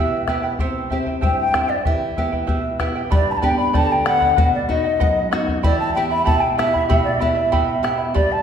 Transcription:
Already playing: nylon-string guitar B2 B3 E4 G4, charango E4 G4 B4 E5 G5, quena E5
0.28 nylon-string guitar B3 E4 G4, charango E4 B4 E5 G5, bombo rim, bombo low
0.43 charango E4 B4 G5
0.59 nylon-string guitar C3, charango E4 G4 C5 E5 G5, bombo low
0.90 nylon-string guitar C4 E4 G4, charango E4 C5 E5 G5, bombo low
1.06 charango E4 C5 G5, bombo low
1.21 nylon-string guitar G2, charango E4 G4 C5 E5 G5, quena G5, bombo low
1.40 quena G5
1.53 nylon-string guitar C4 E4 G4, charango E4 C5 E5 G5, bombo rim, bombo low
1.69 charango E4 C5 G5, quena D5
1.85 nylon-string guitar E3, charango E4 G4 B4 E5 G5, quena E5, bombo low
2.16 nylon-string guitar B3 E4 G4, charango E4 B4 E5 G5, bombo low
2.32 charango E4 B4 G5, bombo low
2.47 nylon-string guitar B2, charango E4 G4 B4 E5 G5, bombo low
2.79 nylon-string guitar B3 E4 G4, charango E4 B4 E5 G5, bombo rim, bombo low
2.95 charango E4 B4 G5
3.10 nylon-string guitar G2, charango G4 B4 D5 G5 B5, quena D5, bombo low
3.30 quena A5 B5
3.36 quena A5
3.42 nylon-string guitar B3 D4 G4, charango B4 D5 G5 B5, quena G5, bombo low
3.58 charango B4 D5 B5, quena B5
3.73 nylon-string guitar D3, charango G4 B4 D5 G5 B5, quena A5, bombo low
3.92 quena G5
4.05 nylon-string guitar B3 D4 G4, charango B4 D5 G5 B5, quena F#5, bombo rim
4.21 charango B4 D5 B5, bombo low
4.36 nylon-string guitar B2, charango B4 D#5 F#5, bombo low
4.54 quena D5
4.68 nylon-string guitar B3 D#4 F#4, charango B4 D#5 F#5, quena D#5, bombo low
4.84 charango D#5 F#5
5.00 nylon-string guitar F#2, charango B4 D#5 F#5, bombo low
5.31 nylon-string guitar B3 D#4 F#4, charango B4 D#5 F#5, bombo rim
5.48 charango D#5 F#5, bombo low
5.63 nylon-string guitar E3, charango E4 G4 E5 G5 B5, quena D5, bombo low
5.79 quena A5
5.93 nylon-string guitar B3 E4 G4, charango E4 E5 G5 B5, quena G5
6.09 charango E4 E5 B5, quena B5
6.24 nylon-string guitar B2, charango E4 G4 E5 G5 B5, quena A5, bombo low
6.40 quena G5
6.57 nylon-string guitar B3 E4 G4, charango E4 E5 G5 B5, quena E5, bombo rim
6.74 charango E4 E5 B5, bombo low
6.89 nylon-string guitar B2, charango E4 G4 E5 G5 B5, bombo low
7.04 quena D5
7.19 nylon-string guitar B3 E4 G4, charango E4 E5 G5 B5, quena E5, bombo low
7.35 charango E4 E5 B5
7.52 nylon-string guitar B2, charango E4 G4 E5 G5 B5, bombo low
7.83 nylon-string guitar B3 E4 G4, charango E4 E5 G5 B5, bombo rim
7.98 charango E4 E5 B5
8.14 nylon-string guitar G2, charango G4 B4 D5 G5 B5, quena D5, bombo low
8.32 quena A5

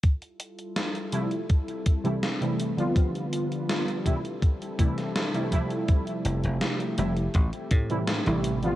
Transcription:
0.02 ambient pad G3 E4 F4 A4, kick, closed hi-hat
0.22 closed hi-hat
0.40 closed hi-hat
0.59 closed hi-hat
0.76 snare, closed hi-hat
0.95 closed hi-hat
1.12 synth keys C3 F3 G3 A3 E4, closed hi-hat
1.31 closed hi-hat
1.50 ambient pad C4, kick, closed hi-hat
1.68 closed hi-hat
1.86 kick, closed hi-hat
2.04 synth keys C3 E3 G3 A3 E4, closed hi-hat
2.23 snare, closed hi-hat
2.41 synth keys C3 E3 G3 A3 E4, closed hi-hat
2.60 closed hi-hat
2.77 synth keys D3 F3 G3 B3 F4, closed hi-hat
2.96 ambient pad G3 D4 F4 B4, kick, closed hi-hat
3.15 closed hi-hat
3.33 closed hi-hat
3.52 closed hi-hat
3.69 snare, closed hi-hat
3.88 closed hi-hat
4.05 synth keys C3 E3 G3 A3 E4, ambient pad C4 E4 A4, kick, closed hi-hat
4.25 closed hi-hat
4.42 kick, closed hi-hat
4.62 closed hi-hat
4.78 synth keys C3 E3 G3 A3 E4, kick, closed hi-hat
4.98 snare, closed hi-hat
5.16 snare, closed hi-hat
5.34 synth keys C3 E3 G3 A3 E4, closed hi-hat
5.50 synth keys C3 F3 G3 A3 E4, kick, closed hi-hat
5.70 closed hi-hat
5.88 ambient pad F3 A3 G4, kick, closed hi-hat
6.07 closed hi-hat
6.25 slap bass F1, closed hi-hat
6.44 slap bass F1, closed hi-hat
6.61 snare, closed hi-hat
6.80 closed hi-hat
6.97 slap bass F1, synth keys C3 F3 G3 A3 E4, closed hi-hat
7.17 closed hi-hat
7.34 slap bass A1, ambient pad E3 C4, kick, closed hi-hat
7.53 closed hi-hat
7.71 slap bass A2, kick, closed hi-hat
7.90 synth keys C3 E3 G3 A3 E4, closed hi-hat
8.07 snare, closed hi-hat
8.26 slap bass A1, synth keys C3 E3 G3 A3 E4, closed hi-hat
8.44 closed hi-hat
8.62 synth keys D3 F3 G3 B3 F4, closed hi-hat

